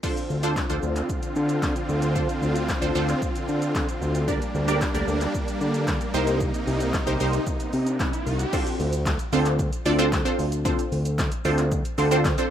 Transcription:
0.03 D3 C4 D4 F4 A4 C5, kick, crash, shaker
0.17 closed hi-hat, shaker
0.30 D2, shaker
0.43 D4 F4 A4 C5, closed hi-hat, shaker
0.56 kick, snare, clap, shaker
0.70 D2 D4 F4 A4 C5, closed hi-hat, shaker
0.83 D2, shaker
0.96 clap, closed hi-hat, shaker
1.09 kick, shaker
1.23 closed hi-hat, shaker
1.36 D3, shaker
1.49 closed hi-hat, shaker
1.63 kick, snare, clap, shaker
1.76 closed hi-hat, shaker
1.89 D2, shaker
2.02 closed hi-hat, shaker
2.16 D4 F4 A4 C5, kick, shaker
2.29 closed hi-hat, shaker
2.42 D2, shaker
2.56 closed hi-hat, shaker
2.69 kick, snare, clap, shaker
2.82 D2 D4 F4 A4 C5, closed hi-hat, shaker
2.95 D2 D4 F4 A4 C5, shaker
3.09 clap, closed hi-hat, shaker
3.22 kick, shaker
3.36 closed hi-hat, shaker
3.48 D3, shaker
3.62 closed hi-hat, shaker
3.75 kick, snare, clap, shaker
3.89 closed hi-hat, shaker
4.02 D2, shaker
4.15 closed hi-hat, shaker
4.28 G3 A#3 D4 G4 A#4 D5, kick, shaker
4.42 closed hi-hat, shaker
4.55 D2, shaker
4.68 D4 G4 A#4 D5, closed hi-hat, shaker
4.81 kick, snare, clap, shaker
4.94 D2 D4 G4 A#4 D5, closed hi-hat, shaker
5.08 D2, shaker
5.21 clap, closed hi-hat, shaker
5.35 kick, shaker
5.48 closed hi-hat, shaker
5.61 D3, shaker
5.74 closed hi-hat, shaker
5.87 kick, snare, clap, shaker
6.01 closed hi-hat, shaker
6.14 C2 C3 D#4 G4 A#4 C5, shaker
6.27 closed hi-hat, shaker
6.41 kick, riser, shaker
6.54 closed hi-hat, shaker
6.67 C2, open hi-hat, shaker
6.80 closed hi-hat, shaker
6.94 kick, snare, clap, shaker
7.07 C2 D#4 G4 A#4 C5, closed hi-hat, shaker
7.20 C2 D#4 G4 A#4 C5, open hi-hat, shaker
7.33 closed hi-hat, shaker
7.47 kick, shaker
7.60 closed hi-hat, shaker
7.73 C3, open hi-hat, shaker
7.87 closed hi-hat, shaker
8.00 kick, snare, clap, shaker
8.13 closed hi-hat, shaker
8.26 C2, open hi-hat, shaker
8.39 closed hi-hat, shaker
8.53 C4 D4 F4 A4 C5, kick, crash, shaker
8.67 closed hi-hat, shaker
8.80 D2, open hi-hat, shaker
8.93 closed hi-hat, shaker
9.06 kick, snare, clap, shaker
9.19 closed hi-hat, shaker
9.33 D2 C4 D4 F4 A4 C5, open hi-hat, shaker
9.46 clap, closed hi-hat, shaker
9.59 kick, shaker
9.73 closed hi-hat, shaker
9.85 D2 C4 D4 F4 A4 D5, open hi-hat, shaker
9.99 C4 D4 F4 A4 C5, closed hi-hat, shaker
10.12 kick, snare, clap, shaker
10.25 C4 D4 F4 A4 C5, closed hi-hat, shaker
10.39 D2, open hi-hat, shaker
10.52 closed hi-hat, shaker
10.65 C4 D4 F4 A4 C5, kick, shaker
10.79 closed hi-hat, shaker
10.92 D2, open hi-hat, shaker
11.05 closed hi-hat, shaker
11.18 kick, snare, clap, shaker
11.32 closed hi-hat, shaker
11.45 D2 C4 D4 F4 A4 C5, open hi-hat, shaker
11.58 clap, closed hi-hat, shaker
11.72 kick, shaker
11.85 closed hi-hat, shaker
11.98 D2 C4 D4 F4 A4 C5, open hi-hat, shaker
12.11 C4 D4 F4 A4 C5, closed hi-hat, shaker
12.25 kick, snare, clap, shaker
12.38 C4 D4 F4 A4 C5, closed hi-hat, shaker

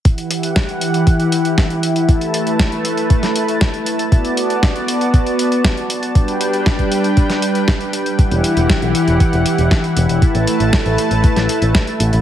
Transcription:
0.05 E3 E4 G4 F#5, kick, closed hi-hat
0.18 closed hi-hat
0.31 closed hi-hat
0.43 closed hi-hat
0.56 kick, snare, closed hi-hat
0.69 closed hi-hat
0.81 closed hi-hat
0.94 closed hi-hat
1.07 kick, closed hi-hat
1.20 closed hi-hat
1.32 closed hi-hat
1.45 closed hi-hat
1.58 kick, snare, closed hi-hat
1.70 closed hi-hat
1.83 closed hi-hat
1.96 closed hi-hat
2.09 A3 B4 A5, kick, closed hi-hat
2.21 closed hi-hat
2.34 closed hi-hat
2.47 closed hi-hat
2.59 kick, snare, closed hi-hat
2.72 closed hi-hat
2.85 closed hi-hat
2.97 closed hi-hat
3.10 kick, closed hi-hat
3.23 snare, closed hi-hat
3.36 closed hi-hat
3.48 closed hi-hat
3.61 kick, snare, closed hi-hat
3.74 closed hi-hat
3.86 closed hi-hat
3.99 closed hi-hat
4.12 B3 F#4 D5, kick, closed hi-hat
4.25 closed hi-hat
4.37 closed hi-hat
4.50 closed hi-hat
4.63 kick, snare, closed hi-hat
4.76 closed hi-hat
4.88 closed hi-hat
5.01 closed hi-hat
5.14 kick, closed hi-hat
5.27 closed hi-hat
5.39 closed hi-hat
5.52 closed hi-hat
5.64 kick, snare, closed hi-hat
5.77 closed hi-hat
5.90 closed hi-hat
6.03 closed hi-hat
6.15 G3 D4 B4 G5, kick, closed hi-hat
6.28 closed hi-hat
6.41 closed hi-hat
6.53 closed hi-hat
6.66 kick, snare, closed hi-hat
6.79 kick, closed hi-hat
6.92 closed hi-hat
7.04 closed hi-hat
7.17 kick, closed hi-hat
7.30 snare, closed hi-hat
7.42 closed hi-hat
7.55 closed hi-hat
7.68 kick, snare, closed hi-hat
7.81 closed hi-hat
7.93 closed hi-hat
8.06 closed hi-hat
8.19 E3 E4 G4 F#5, kick, closed hi-hat
8.31 E1, closed hi-hat
8.44 closed hi-hat
8.57 E1, closed hi-hat
8.70 kick, snare, closed hi-hat
8.82 B1, closed hi-hat
8.95 closed hi-hat
9.08 E1, closed hi-hat
9.20 kick, closed hi-hat
9.33 E1, closed hi-hat
9.46 closed hi-hat
9.58 E1, closed hi-hat
9.71 kick, snare, closed hi-hat
9.84 closed hi-hat
9.97 E1, closed hi-hat
10.09 E1, closed hi-hat
10.22 A3 B4 A5, kick, closed hi-hat
10.35 A1, closed hi-hat
10.47 closed hi-hat
10.60 A1, closed hi-hat
10.73 kick, snare, closed hi-hat
10.86 A1, closed hi-hat
10.98 closed hi-hat
11.11 A1, closed hi-hat
11.24 kick, closed hi-hat
11.36 A1, snare, closed hi-hat
11.49 closed hi-hat
11.62 A1, closed hi-hat
11.75 kick, snare, closed hi-hat
11.87 closed hi-hat
12.00 A1, closed hi-hat
12.13 A1, closed hi-hat

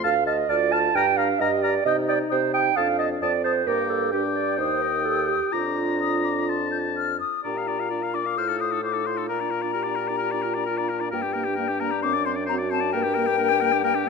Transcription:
Already playing: A3
0.04 D2 F5 A5 F6
0.26 D#5 A5 F6
0.49 D2 F4 D5 A5 F6
0.71 A5 F6
0.95 G2 D4 G5 A#5 F6
1.17 F5 A#5 F6
1.40 G2 G4 D#5 A#5 F6
1.62 D5 A#5 F6
1.85 C3 D#4 D#5 G5 D#6
2.08 D5 G5 D#6
2.30 C3 C5 G5 D#6
2.54 G5 D#6
2.76 F2 D4 F5 A5 D#6
2.99 D#5 A5 D#6
3.22 F2 C4 D5 A5 D#6
3.44 C5 A5 D#6
3.67 G2 A#3 A#4 G5 D6
3.89 A4
4.11 D4 G4 G5 D6
4.35 D5
4.56 D#2 D#4 C5 G5 D#6
4.82 A#4
5.04 G4 A4
5.29 G4
5.52 F2 D4 F4 A#5 D6
6.01 D#6
6.25 D6
6.49 A5 C6
6.72 G6
6.97 F6
7.20 D#6
7.44 A#2 D4 G4 D5 A#5
7.56 F4 F5
7.67 D4 D5
7.79 F4 F5
7.90 D4 F4 D5
8.02 F4 F5
8.14 D4 D5 D6
8.25 F4 F5
8.37 A2 F4 C5 F6
8.48 D#4 A4
8.60 F4 C5 D#6
8.71 D#4 A4
8.83 F4 C5 D6
8.93 D#4 A4
9.06 F4 C5 C6
9.17 D#4 A4
9.28 A#2 F4 A#4 A#5
9.40 D4 D5
9.51 F4 A#4
9.62 D4 D5
9.73 F4 G4 A#4
9.83 D4 D5
9.96 F4 A#4
10.08 D4 D5
10.18 F4 A#4
10.31 D4 D5
10.42 F4 A#4
10.54 D4 D5
10.66 F4 A#4
10.78 D4 D5
10.89 F4 A#4
11.00 D4 D5
11.11 G2 A#3 G4 A#4 G5
11.22 D4 G4
11.33 A#3 A#4
11.44 D4 G4
11.56 A#3 D4 A#4
11.68 D4 G4
11.80 A#3 A#4 A#5
11.91 D4 G4
12.02 F#2 C4 C5 D6
12.14 D4 D5
12.26 C4 C5 C6
12.36 D4 D5
12.46 C4 F#4 C5 A#5
12.58 D4 D5
12.70 C4 C5 A5
12.81 D4 D5
12.93 G2 A#3 A#4 G5
13.03 D4 G4
13.14 A#3 A#4
13.27 D4 G4
13.38 A#3 A#4
13.49 D4 G4
13.60 A#3 A#4
13.72 D4 G4
13.83 A#3 A#4
13.95 D4 G4

